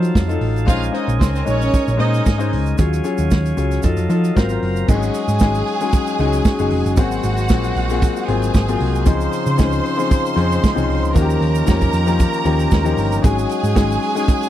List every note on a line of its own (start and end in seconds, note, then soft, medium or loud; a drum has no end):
0.00 0.28 F#3 medium
0.00 0.66 F#3 medium
0.00 0.28 D#4 medium
0.00 0.67 D#4 medium
0.00 0.29 F4 medium
0.00 0.30 A4 medium
0.00 0.19 C5 loud
0.00 0.66 F5 medium
0.00 0.67 A5 medium
0.00 closed hi-hat soft
0.04 shaker medium
0.15 0.36 F2 medium
0.15 kick medium
0.15 snare loud
0.15 shaker medium
0.28 0.58 F#3 medium
0.28 0.58 D#4 medium
0.28 0.59 F4 medium
0.28 0.59 A4 medium
0.28 closed hi-hat soft
0.28 shaker soft
0.41 0.68 A1 loud
0.41 open hi-hat medium
0.56 closed hi-hat medium
0.56 shaker soft
0.66 0.88 A#1 medium
0.66 0.87 G#3 medium
0.66 0.87 C#4 medium
0.66 2.77 C#4 medium
0.66 0.88 D#4 medium
0.66 0.78 F4 loud
0.66 2.77 A#4 medium
0.66 0.88 C5 medium
0.66 2.77 D#5 medium
0.66 0.79 F5 loud
0.66 3.81 G#5 medium
0.66 kick loud
0.66 closed hi-hat medium
0.66 shaker medium
0.82 closed hi-hat medium
0.82 shaker medium
0.92 1.34 G#3 medium
0.92 1.34 C#4 medium
0.92 1.34 D#4 medium
0.92 1.05 D#4 medium
0.92 1.34 C5 medium
0.92 1.05 D#5 medium
0.92 closed hi-hat medium
1.08 1.21 A#1 medium
1.08 closed hi-hat soft
1.08 shaker medium
1.19 1.41 C#2 medium
1.19 1.31 C4 medium
1.19 1.31 C5 medium
1.19 kick loud
1.19 snare loud
1.19 shaker medium
1.34 1.44 C4 medium
1.34 1.44 C5 medium
1.34 closed hi-hat soft
1.34 shaker soft
1.45 1.68 A#1 medium
1.45 1.87 G#3 medium
1.45 1.87 C#4 medium
1.45 1.97 C#4 medium
1.45 1.87 D#4 medium
1.45 1.87 C#5 medium
1.45 1.97 C#5 loud
1.45 closed hi-hat medium
1.45 shaker medium
1.61 closed hi-hat soft
1.61 shaker medium
1.74 kick loud
1.74 closed hi-hat medium
1.74 shaker medium
1.88 1.97 A#1 loud
1.88 closed hi-hat soft
1.88 shaker soft
1.97 2.20 A#2 medium
1.97 2.28 G#3 medium
1.97 2.29 C#4 medium
1.97 2.29 D#4 medium
1.97 2.49 D#4 medium
1.97 2.29 C5 medium
1.97 2.49 D#5 medium
1.97 closed hi-hat medium
2.14 closed hi-hat medium
2.14 shaker medium
2.26 2.54 G#2 medium
2.26 kick loud
2.26 snare loud
2.26 shaker medium
2.38 2.69 G#3 medium
2.38 2.69 C#4 medium
2.38 2.69 D#4 medium
2.38 2.69 C5 medium
2.38 closed hi-hat soft
2.38 shaker soft
2.53 2.73 C#2 medium
2.53 open hi-hat medium
2.66 closed hi-hat soft
2.66 shaker soft
2.78 2.99 D#2 medium
2.78 2.98 F#3 medium
2.78 4.87 F#3 medium
2.78 2.98 C#4 medium
2.78 2.99 F4 medium
2.78 2.99 G#4 medium
2.78 3.83 C#5 medium
2.78 4.87 F5 medium
2.78 kick loud
2.78 closed hi-hat medium
2.78 shaker medium
2.93 closed hi-hat medium
2.93 shaker medium
3.04 3.45 F#3 medium
3.04 3.45 C#4 medium
3.04 3.45 F4 medium
3.04 3.45 G#4 loud
3.04 closed hi-hat medium
3.04 shaker medium
3.18 3.28 D#2 medium
3.18 closed hi-hat soft
3.18 shaker medium
3.31 3.52 D#2 medium
3.31 kick medium
3.31 snare loud
3.31 shaker medium
3.45 closed hi-hat medium
3.45 shaker soft
3.57 3.77 C#2 medium
3.57 3.81 F#3 medium
3.57 3.83 C#4 medium
3.57 3.83 F4 medium
3.57 3.84 G#4 medium
3.57 closed hi-hat medium
3.57 shaker medium
3.71 snare soft
3.71 closed hi-hat soft
3.71 shaker medium
3.83 3.94 F2 loud
3.83 4.04 F#3 medium
3.83 4.04 D#4 medium
3.83 4.05 F4 medium
3.83 4.05 A4 medium
3.83 4.36 D#5 medium
3.83 4.36 A5 medium
3.83 kick medium
3.83 closed hi-hat medium
3.83 shaker medium
3.97 4.07 F2 loud
3.97 closed hi-hat soft
3.97 shaker medium
4.08 4.30 F3 medium
4.08 4.34 F#3 medium
4.08 4.36 D#4 medium
4.08 4.35 F4 medium
4.08 4.36 A4 medium
4.08 closed hi-hat medium
4.08 shaker soft
4.24 closed hi-hat soft
4.24 shaker medium
4.36 4.57 G#1 medium
4.36 4.47 F#3 medium
4.36 4.47 C4 medium
4.36 4.47 F4 medium
4.36 4.47 A#4 loud
4.36 4.88 C5 medium
4.36 4.88 A#5 medium
4.36 kick loud
4.36 snare loud
4.36 shaker medium
4.49 4.79 F#3 medium
4.49 4.79 C4 medium
4.49 4.79 F4 medium
4.49 4.80 A#4 medium
4.49 closed hi-hat soft
4.49 shaker medium
4.62 4.83 F#1 medium
4.62 open hi-hat medium
4.76 closed hi-hat soft
4.76 shaker soft
4.88 5.09 G#1 medium
4.88 5.29 F#3 medium
4.88 5.29 G#3 medium
4.88 9.04 G#3 medium
4.88 4.95 C4 medium
4.88 6.96 C#4 medium
4.88 5.29 D#4 medium
4.88 9.04 F#4 medium
4.88 6.94 G#4 medium
4.88 5.29 G#4 medium
4.88 6.94 G#5 medium
4.88 kick loud
4.88 crash loud
4.88 shaker medium
4.95 5.32 C#4 medium
5.03 closed hi-hat soft
5.03 shaker medium
5.14 closed hi-hat medium
5.14 shaker medium
5.28 5.42 G#2 medium
5.28 closed hi-hat soft
5.28 shaker medium
5.39 5.61 G#1 loud
5.39 5.70 F#3 medium
5.39 5.71 G#3 medium
5.39 5.71 C#4 medium
5.39 5.71 D#4 medium
5.39 5.71 G#4 medium
5.39 kick medium
5.39 snare loud
5.39 shaker loud
5.55 closed hi-hat soft
5.55 shaker soft
5.67 closed hi-hat medium
5.80 6.10 F#3 medium
5.80 6.10 G#3 medium
5.80 6.10 C#4 medium
5.80 6.10 D#4 medium
5.80 6.11 G#4 medium
5.80 snare soft
5.80 closed hi-hat soft
5.80 shaker medium
5.92 kick loud
5.92 closed hi-hat medium
5.92 shaker medium
6.07 closed hi-hat soft
6.07 shaker medium
6.19 6.40 C#2 medium
6.19 6.49 F#3 loud
6.19 6.49 G#3 medium
6.19 6.49 C#4 medium
6.19 6.49 D#4 medium
6.19 6.50 G#4 medium
6.19 closed hi-hat medium
6.33 closed hi-hat medium
6.33 shaker medium
6.45 kick loud
6.45 snare loud
6.45 shaker medium
6.59 6.69 F#1 medium
6.59 6.88 F#3 medium
6.59 6.89 G#3 medium
6.59 6.89 C#4 medium
6.59 6.89 D#4 medium
6.59 6.89 G#4 medium
6.59 closed hi-hat soft
6.59 shaker medium
6.70 6.82 F1 loud
6.70 open hi-hat medium
6.86 6.97 F#1 loud
6.86 closed hi-hat medium
6.86 shaker soft
6.97 7.18 G#1 medium
6.97 7.38 F#3 medium
6.97 7.38 A#3 medium
6.97 7.38 C4 medium
6.97 8.26 F#4 medium
6.97 7.38 F#4 medium
6.97 7.39 G#4 medium
6.97 11.12 C5 medium
6.97 8.26 F#5 medium
6.97 kick loud
6.97 closed hi-hat medium
6.97 shaker loud
7.11 closed hi-hat soft
7.11 shaker medium
7.23 7.50 G#1 loud
7.23 closed hi-hat medium
7.23 shaker medium
7.37 closed hi-hat soft
7.37 shaker medium
7.49 7.70 A#1 medium
7.49 7.79 F#3 medium
7.49 7.79 A#3 medium
7.49 7.80 C4 medium
7.49 7.80 F4 medium
7.49 7.80 G#4 medium
7.49 kick loud
7.49 snare loud
7.49 shaker loud
7.64 closed hi-hat soft
7.64 shaker soft
7.76 8.07 A#1 loud
7.76 closed hi-hat medium
7.89 8.19 F#3 medium
7.89 8.19 A#3 medium
7.89 8.19 C4 medium
7.89 8.19 F4 medium
7.89 8.20 G#4 medium
7.89 snare soft
7.89 closed hi-hat medium
7.89 shaker medium
8.02 kick loud
8.02 closed hi-hat medium
8.02 shaker medium
8.16 closed hi-hat soft
8.16 shaker medium
8.28 8.49 G#1 medium
8.28 8.58 F#3 medium
8.28 8.58 A#3 medium
8.28 8.58 C4 medium
8.28 8.58 F4 medium
8.28 9.05 G#4 medium
8.28 8.58 G#4 medium
8.28 9.05 G#5 medium
8.28 closed hi-hat medium
8.42 closed hi-hat medium
8.42 shaker medium
8.54 8.75 G#1 medium
8.54 kick loud
8.54 snare loud
8.54 shaker medium
8.68 8.98 F#3 medium
8.68 8.98 A#3 medium
8.68 8.98 C4 medium
8.68 8.98 F4 medium
8.68 8.98 G#4 medium
8.68 closed hi-hat soft
8.68 shaker medium
8.80 9.06 C2 medium
8.80 open hi-hat medium
8.95 closed hi-hat medium
8.95 shaker medium
9.05 9.27 C#2 loud
9.05 11.13 C#3 medium
9.05 9.46 F3 medium
9.05 9.46 C4 medium
9.05 9.46 C#4 medium
9.05 11.13 D#4 medium
9.05 9.47 D#4 medium
9.05 13.20 F4 medium
9.05 9.47 G#4 medium
9.05 11.11 C5 medium
9.05 11.11 C6 loud
9.05 kick loud
9.05 closed hi-hat medium
9.05 shaker medium
9.21 closed hi-hat soft
9.21 shaker medium
9.33 closed hi-hat medium
9.33 shaker medium
9.46 9.61 C#3 medium
9.46 closed hi-hat soft
9.46 shaker medium
9.58 9.79 C#2 medium
9.58 9.88 F3 medium
9.58 9.88 C4 medium
9.58 9.88 C#4 medium
9.58 9.88 D#4 medium
9.58 9.88 G#4 medium
9.58 kick loud
9.58 snare loud
9.58 shaker loud
9.72 closed hi-hat soft
9.72 shaker soft
9.86 closed hi-hat medium
9.97 10.27 F3 medium
9.97 10.27 C4 medium
9.97 10.28 C#4 medium
9.97 10.28 D#4 medium
9.97 10.28 G#4 medium
9.97 snare soft
9.97 closed hi-hat soft
9.97 shaker medium
10.11 kick loud
10.11 closed hi-hat medium
10.11 shaker medium
10.25 closed hi-hat soft
10.25 shaker medium
10.36 10.57 F2 medium
10.36 10.66 F3 medium
10.36 10.66 C4 medium
10.36 10.67 C#4 medium
10.36 10.67 D#4 medium
10.36 10.67 G#4 medium
10.36 closed hi-hat medium
10.52 closed hi-hat soft
10.52 shaker medium
10.64 kick loud
10.64 snare loud
10.64 shaker medium
10.75 10.86 C2 medium
10.75 11.05 F3 medium
10.75 11.05 C4 medium
10.75 11.06 C#4 medium
10.75 11.06 D#4 medium
10.75 11.06 G#4 medium
10.75 closed hi-hat soft
10.75 shaker soft
10.89 11.03 C2 loud
10.89 open hi-hat medium
11.03 11.12 C#2 medium
11.03 closed hi-hat medium
11.03 shaker soft
11.14 11.36 D#2 loud
11.14 13.22 D#3 medium
11.14 11.55 F3 medium
11.14 11.55 A#3 medium
11.14 11.55 C#4 medium
11.14 14.49 C#4 medium
11.14 11.55 D#4 medium
11.14 11.22 F#4 medium
11.14 13.23 G4 medium
11.14 13.19 A#4 medium
11.14 13.19 A#5 medium
11.14 kick loud
11.14 closed hi-hat medium
11.14 shaker medium
11.22 11.59 G4 loud
11.30 closed hi-hat soft
11.30 shaker medium
11.41 11.61 D#2 loud
11.41 closed hi-hat medium
11.55 closed hi-hat soft
11.55 shaker medium
11.66 11.88 F2 loud
11.66 11.97 F3 medium
11.66 11.97 A#3 medium
11.66 11.97 C#4 medium
11.66 11.97 D#4 medium
11.66 11.97 G4 medium
11.66 kick loud
11.66 snare loud
11.66 shaker medium
11.81 kick medium
11.81 closed hi-hat soft
11.81 shaker soft
11.93 12.24 F2 medium
11.93 closed hi-hat medium
11.93 shaker medium
12.06 12.36 F3 medium
12.06 12.36 A#3 medium
12.06 12.36 C#4 medium
12.06 12.36 D#4 medium
12.06 12.37 G4 medium
12.06 snare soft
12.06 closed hi-hat soft
12.06 shaker medium
12.19 kick loud
12.19 closed hi-hat medium
12.19 shaker medium
12.33 closed hi-hat soft
12.33 shaker soft
12.45 12.66 D#2 medium
12.45 12.75 F3 medium
12.45 12.75 A#3 medium
12.45 12.75 C#4 medium
12.45 12.75 D#4 medium
12.45 12.76 G4 medium
12.45 closed hi-hat medium
12.45 shaker soft
12.59 closed hi-hat medium
12.59 shaker medium
12.71 12.92 D#2 loud
12.71 kick loud
12.71 snare loud
12.71 shaker medium
12.84 13.14 F3 medium
12.84 13.15 A#3 medium
12.84 13.14 C#4 medium
12.84 13.15 D#4 medium
12.84 13.15 G4 medium
12.84 shaker soft
12.97 13.18 G1 loud
12.97 open hi-hat medium
12.97 shaker soft
13.12 closed hi-hat medium
13.12 shaker medium
13.22 13.44 G#1 loud
13.22 13.63 F#3 medium
13.22 13.63 G#3 medium
13.22 14.49 G#3 medium
13.22 13.63 C#4 medium
13.22 13.64 D#4 medium
13.22 14.49 F#4 medium
13.22 13.64 G#4 loud
13.22 14.49 G#4 medium
13.22 14.49 G#5 loud
13.22 kick loud
13.22 closed hi-hat medium
13.22 shaker medium
13.38 closed hi-hat soft
13.38 shaker medium
13.49 closed hi-hat medium
13.49 shaker medium
13.63 13.78 G#2 medium
13.63 closed hi-hat soft
13.63 shaker medium
13.75 13.96 G#1 medium
13.75 14.05 F#3 medium
13.75 14.05 G#3 medium
13.75 14.06 C#4 medium
13.75 14.06 D#4 medium
13.75 14.06 G#4 medium
13.75 kick loud
13.75 snare loud
13.75 shaker medium
13.90 closed hi-hat soft
13.90 shaker soft
14.03 closed hi-hat medium
14.15 14.45 F#3 medium
14.15 14.45 G#3 medium
14.15 14.45 C#4 medium
14.15 14.45 D#4 medium
14.15 14.45 G#4 medium
14.15 snare soft
14.15 closed hi-hat medium
14.15 shaker medium
14.28 kick loud
14.28 closed hi-hat medium
14.28 shaker medium
14.43 shaker medium